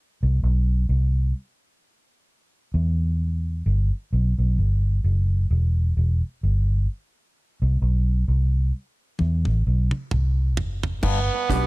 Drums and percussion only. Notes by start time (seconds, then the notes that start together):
9.19 high tom
9.45 high tom
9.91 mid tom
10.11 mid tom
10.57 floor tom
10.83 floor tom
11.03 kick, crash, high bongo
11.50 kick, closed hi-hat